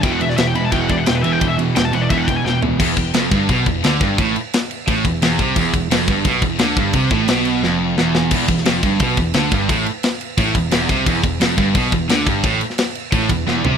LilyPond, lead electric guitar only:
\new Staff \with { instrumentName = "Lead electric guitar" } { \time 4/4 \key e \minor \tempo 4 = 174 g''16 fis''16 e''16 d''16 e''16 g''16 b''16 a''16 g''16 fis''16 d''16 fis''16 g''16 b'16 e''16 g''16 | g''16 e''16 r8 g''16 a''16 fis''16 d''16 e''16 fis''16 g''16 gis''16 g''8 r8 | \key c \lydian r1 | r1 |
r1 | r1 | r1 | r1 |
r1 | r1 | }